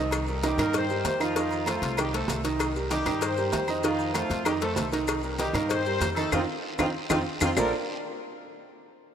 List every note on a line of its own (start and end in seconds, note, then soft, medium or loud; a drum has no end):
0.00 0.53 C2 loud
0.00 0.22 D#3 medium
0.00 0.23 D#4 loud
0.00 0.23 D#5 loud
0.11 cowbell loud
0.11 high conga soft
0.11 low agogo loud
0.11 long guiro medium
0.11 claves medium
0.11 maracas medium
0.28 0.40 G3 medium
0.28 0.41 G4 medium
0.28 0.41 A#4 medium
0.28 high conga soft
0.28 maracas soft
0.43 0.56 D#3 medium
0.43 0.58 G3 medium
0.43 0.56 D#4 medium
0.43 0.59 G4 loud
0.43 0.56 D#5 medium
0.43 cowbell medium
0.43 high conga loud
0.43 low timbale medium
0.43 low agogo loud
0.43 short guiro medium
0.43 maracas medium
0.58 1.01 G2 loud
0.58 0.84 D#3 medium
0.58 0.75 A#3 medium
0.58 0.84 D#4 loud
0.58 0.75 A#4 loud
0.58 0.85 D#5 medium
0.58 cowbell medium
0.58 high conga soft
0.58 low conga medium
0.58 low agogo loud
0.58 short guiro medium
0.58 claves medium
0.58 maracas soft
0.73 1.04 C4 medium
0.73 1.04 C5 loud
0.73 cowbell loud
0.73 high conga soft
0.73 low conga medium
0.73 low agogo medium
0.73 long guiro medium
0.73 maracas medium
0.89 1.15 G3 medium
0.89 1.15 G4 medium
0.89 1.15 A#4 medium
0.89 high conga soft
0.89 maracas soft
1.04 1.76 F2 medium
1.04 1.20 C4 medium
1.04 1.20 C5 loud
1.04 cowbell medium
1.04 high conga medium
1.04 low timbale medium
1.04 low agogo loud
1.04 short guiro medium
1.04 maracas medium
1.20 1.33 D#3 medium
1.20 1.64 F3 medium
1.20 1.33 D#4 loud
1.20 1.64 F4 medium
1.20 1.33 D#5 medium
1.20 low agogo loud
1.20 short guiro medium
1.20 claves medium
1.20 maracas soft
1.36 1.61 D#3 loud
1.36 1.62 D#4 loud
1.36 1.62 D#5 loud
1.36 cowbell loud
1.36 high conga soft
1.36 long guiro medium
1.36 maracas medium
1.51 high conga soft
1.51 low agogo medium
1.51 maracas soft
1.66 1.97 F3 medium
1.66 1.93 A3 medium
1.66 1.96 F4 medium
1.66 1.93 A4 medium
1.66 1.93 C5 medium
1.66 cowbell medium
1.66 high conga loud
1.66 low timbale medium
1.66 low agogo loud
1.66 short guiro medium
1.66 claves medium
1.66 maracas medium
1.82 2.25 C2 loud
1.82 cowbell medium
1.82 short guiro medium
1.82 maracas soft
1.97 2.11 D#3 medium
1.97 2.13 G3 medium
1.97 2.11 D#4 medium
1.97 2.13 G4 medium
1.97 2.11 D#5 medium
1.97 cowbell loud
1.97 high conga soft
1.97 low agogo loud
1.97 long guiro medium
1.97 claves medium
1.97 maracas medium
2.13 2.39 A3 medium
2.13 2.43 A3 medium
2.13 2.42 A4 medium
2.13 2.39 A4 medium
2.13 2.39 C5 medium
2.13 cowbell medium
2.13 high conga soft
2.13 maracas soft
2.28 3.00 C2 medium
2.28 cowbell medium
2.28 high conga medium
2.28 low timbale loud
2.28 low agogo medium
2.28 short guiro medium
2.28 maracas medium
2.44 2.70 D#3 medium
2.44 2.70 D#4 medium
2.44 2.70 D#5 medium
2.44 cowbell medium
2.44 short guiro medium
2.44 maracas soft
2.59 cowbell loud
2.59 high conga soft
2.59 low agogo loud
2.59 long guiro medium
2.59 claves medium
2.59 maracas medium
2.76 2.88 G3 medium
2.76 2.88 G4 medium
2.76 2.89 A#4 medium
2.76 high conga soft
2.76 maracas soft
2.91 3.03 D#3 medium
2.91 3.20 G3 medium
2.91 3.04 D#4 loud
2.91 3.20 G4 loud
2.91 3.04 D#5 medium
2.91 cowbell medium
2.91 high conga loud
2.91 low timbale medium
2.91 low agogo loud
2.91 short guiro medium
2.91 maracas medium
3.06 3.49 G2 medium
3.06 3.32 D#3 medium
3.06 3.32 D#4 medium
3.06 3.32 D#5 medium
3.06 cowbell medium
3.06 high conga soft
3.06 low conga medium
3.06 low agogo loud
3.06 short guiro medium
3.06 claves medium
3.06 maracas soft
3.21 3.52 C4 medium
3.21 3.51 C5 loud
3.21 cowbell loud
3.21 high conga soft
3.21 low agogo medium
3.21 long guiro medium
3.21 maracas medium
3.37 3.63 G3 medium
3.37 3.63 G4 medium
3.37 3.63 A#4 medium
3.37 high conga soft
3.37 maracas soft
3.52 4.25 F2 medium
3.52 3.82 C4 medium
3.52 3.81 C5 medium
3.52 cowbell medium
3.52 high conga medium
3.52 low timbale medium
3.52 low agogo medium
3.52 short guiro medium
3.52 maracas medium
3.68 3.81 D#3 medium
3.68 3.82 D#4 loud
3.68 3.82 D#5 medium
3.68 low agogo loud
3.68 short guiro medium
3.68 claves medium
3.68 maracas soft
3.83 4.09 D#3 loud
3.83 4.13 F3 medium
3.83 4.09 D#4 loud
3.83 4.13 F4 loud
3.83 4.10 D#5 loud
3.83 cowbell loud
3.83 high conga soft
3.83 long guiro medium
3.83 maracas medium
3.99 high conga soft
3.99 low agogo medium
3.99 maracas soft
4.14 4.44 F3 medium
4.14 4.40 A3 medium
4.14 4.44 F4 medium
4.14 4.40 A4 medium
4.14 4.41 C5 medium
4.14 cowbell medium
4.14 high conga medium
4.14 low timbale medium
4.14 low agogo loud
4.14 short guiro medium
4.14 claves medium
4.14 maracas medium
4.30 4.73 F2 loud
4.30 cowbell medium
4.30 short guiro medium
4.30 maracas soft
4.45 4.59 D#3 medium
4.45 4.53 G3 medium
4.45 4.59 D#4 medium
4.45 4.53 G4 medium
4.45 4.59 D#5 medium
4.45 cowbell loud
4.45 high conga soft
4.45 low agogo loud
4.45 long guiro medium
4.45 claves medium
4.45 maracas medium
4.61 4.87 A3 medium
4.61 4.91 A3 medium
4.61 4.90 A4 medium
4.61 4.87 A4 medium
4.61 4.87 C5 medium
4.61 cowbell medium
4.61 high conga soft
4.61 maracas soft
4.76 5.49 C2 medium
4.76 cowbell medium
4.76 high conga medium
4.76 low timbale medium
4.76 low agogo medium
4.76 short guiro medium
4.76 maracas medium
4.92 5.18 D#3 medium
4.92 5.18 D#4 loud
4.92 5.18 D#5 loud
4.92 cowbell medium
4.92 short guiro medium
4.92 maracas soft
5.07 cowbell loud
5.07 high conga soft
5.07 low agogo loud
5.07 long guiro medium
5.07 claves medium
5.07 maracas medium
5.23 5.36 G3 medium
5.23 5.36 G4 medium
5.23 5.37 A#4 medium
5.23 high conga soft
5.23 maracas soft
5.38 5.52 D#3 loud
5.38 5.54 G3 medium
5.38 5.52 D#4 loud
5.38 5.53 G4 loud
5.38 5.52 D#5 medium
5.38 cowbell medium
5.38 high conga loud
5.38 low timbale medium
5.38 low agogo medium
5.38 short guiro medium
5.38 maracas medium
5.53 5.97 G2 loud
5.53 5.80 D#3 medium
5.53 5.70 A#3 medium
5.53 5.81 D#4 medium
5.53 5.69 A#4 loud
5.53 5.81 D#5 loud
5.53 cowbell medium
5.53 high conga soft
5.53 low conga medium
5.53 low agogo loud
5.53 short guiro medium
5.53 claves medium
5.53 maracas soft
5.69 6.00 C4 medium
5.69 5.99 C5 loud
5.69 cowbell loud
5.69 high conga soft
5.69 low conga medium
5.69 low agogo medium
5.69 long guiro medium
5.69 maracas medium
5.86 6.12 G3 medium
5.86 6.12 G4 medium
5.86 6.12 A#4 medium
5.86 high conga soft
5.86 maracas soft
6.00 6.30 F2 medium
6.00 6.08 C4 medium
6.00 6.07 C5 medium
6.00 cowbell medium
6.00 high conga medium
6.00 low timbale medium
6.00 low agogo medium
6.00 short guiro medium
6.00 maracas medium
6.15 6.30 D#3 medium
6.15 6.31 A3 medium
6.15 6.30 D#4 medium
6.15 6.30 A4 loud
6.15 6.30 D#5 medium
6.15 high conga medium
6.15 low agogo loud
6.15 short guiro medium
6.15 claves medium
6.15 maracas soft
6.32 6.44 F2 loud
6.32 6.40 C4 medium
6.32 6.43 C4 loud
6.32 6.39 D#4 medium
6.32 6.43 D#4 loud
6.32 6.39 F4 medium
6.32 6.43 F4 loud
6.32 cowbell loud
6.32 high conga loud
6.32 high timbale medium
6.32 long guiro medium
6.32 claves loud
6.32 maracas loud
6.78 6.90 F2 medium
6.78 6.86 C4 loud
6.78 6.89 C4 loud
6.78 6.86 D#4 loud
6.78 6.89 D#4 medium
6.78 6.86 F4 loud
6.78 6.89 F4 medium
6.78 cowbell loud
6.78 high conga loud
6.78 high timbale loud
6.78 long guiro loud
6.78 claves loud
6.78 maracas medium
7.09 7.21 F2 loud
7.09 7.17 C4 loud
7.09 7.20 C4 loud
7.09 7.17 D#4 loud
7.09 7.20 D#4 loud
7.09 7.17 F4 loud
7.09 7.20 F4 loud
7.09 cowbell loud
7.09 high conga loud
7.09 high timbale loud
7.09 long guiro loud
7.09 claves loud
7.09 maracas loud
7.41 7.53 F2 loud
7.41 7.49 C4 loud
7.41 7.52 C4 loud
7.41 7.49 D#4 medium
7.41 7.52 D#4 medium
7.41 7.49 F4 loud
7.41 7.52 F4 loud
7.41 cowbell loud
7.41 high conga loud
7.41 high timbale loud
7.41 long guiro loud
7.41 claves loud
7.41 maracas loud
7.56 7.71 A#1 medium
7.56 7.71 A#3 loud
7.56 7.71 F4 loud
7.56 7.71 A4 loud
7.56 7.71 A#4 loud
7.56 7.72 A#4 medium
7.56 7.72 C5 loud
7.56 7.72 D5 loud
7.56 low bongo loud
7.56 low conga loud
7.56 low timbale loud
7.56 long guiro medium
7.56 claves loud
7.56 maracas loud